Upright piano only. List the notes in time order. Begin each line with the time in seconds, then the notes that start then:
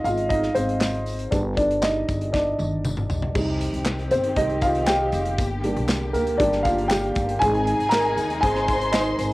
Already playing: G#3 C4 D#4 F4 D#5 F5
0.04 F4 F5
0.29 D#4 D#5
0.55 C4 C5
1.31 G3 B3 D4 D5
1.57 D4 D5
1.82 D#4 D#5
2.33 D4 D5
3.35 G3 C4 D#4
4.11 C4 C5
4.37 G3 C4 D#4 D#5
4.62 F4 F5
4.86 G4 G5
5.64 G3 A#3 D4
6.13 A#3 A#4
6.38 G3 A#3 D4 D5
6.63 F4 F5
6.88 G4 G5
7.39 G#3 C4 D#4 G#4 G#5
7.89 A#4 A#5
8.41 G#4 G#5
8.92 D#4 D#5